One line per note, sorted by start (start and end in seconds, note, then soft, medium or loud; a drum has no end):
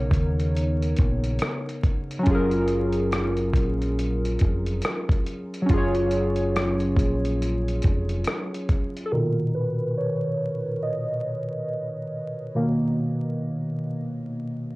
0.00 2.19 C#3 medium
0.00 2.21 B3 medium
0.00 2.23 D#4 medium
0.00 2.25 A#4 medium
0.00 2.27 C#5 medium
0.11 0.94 D#2 medium
0.11 kick medium
0.11 closed hi-hat medium
0.40 closed hi-hat medium
0.56 closed hi-hat medium
0.82 closed hi-hat soft
0.96 1.38 A#1 medium
0.96 kick medium
0.96 closed hi-hat medium
1.24 closed hi-hat medium
1.39 cross-stick loud
1.39 closed hi-hat medium
1.69 closed hi-hat medium
1.83 kick medium
1.83 closed hi-hat medium
2.11 closed hi-hat soft
2.19 5.61 F#3 medium
2.23 5.64 C#4 medium
2.23 5.66 F4 medium
2.23 kick loud
2.23 closed hi-hat medium
2.27 3.51 F#1 medium
2.27 5.67 G#4 medium
2.35 5.69 A#4 medium
2.51 closed hi-hat soft
2.68 closed hi-hat medium
2.93 closed hi-hat soft
3.12 cross-stick loud
3.12 closed hi-hat medium
3.37 closed hi-hat soft
3.54 4.36 A#1 medium
3.54 kick medium
3.54 closed hi-hat medium
3.82 closed hi-hat soft
3.99 closed hi-hat medium
4.25 closed hi-hat soft
4.39 4.80 F1 loud
4.39 kick medium
4.39 closed hi-hat medium
4.66 closed hi-hat soft
4.82 cross-stick loud
4.82 closed hi-hat medium
5.09 kick loud
5.09 closed hi-hat soft
5.26 closed hi-hat medium
5.54 closed hi-hat soft
5.62 9.05 F#3 medium
5.66 6.94 F#1 loud
5.66 9.07 C#4 medium
5.66 9.09 F4 medium
5.66 kick loud
5.66 closed hi-hat medium
5.74 9.10 G#4 medium
5.74 9.12 C#5 medium
5.95 closed hi-hat soft
6.11 closed hi-hat medium
6.36 closed hi-hat soft
6.56 cross-stick loud
6.56 closed hi-hat medium
6.80 closed hi-hat soft
6.97 7.79 A#1 loud
6.97 kick medium
6.97 closed hi-hat medium
7.25 closed hi-hat soft
7.42 closed hi-hat medium
7.68 closed hi-hat soft
7.82 8.23 F1 loud
7.82 kick medium
7.82 closed hi-hat medium
8.09 closed hi-hat soft
8.24 cross-stick loud
8.24 closed hi-hat medium
8.54 closed hi-hat soft
8.69 kick medium
8.69 closed hi-hat medium
8.97 closed hi-hat soft
9.06 9.12 A4 medium
9.12 12.52 A#2 medium
9.12 12.51 B2 medium
9.12 12.51 D#3 soft
9.12 9.52 A#4 medium
9.54 9.95 B4 medium
9.97 10.86 C#5 medium
10.83 12.08 D#5 medium
12.55 13.80 B2 soft
12.55 13.80 D#3 soft
12.55 13.80 A#3 medium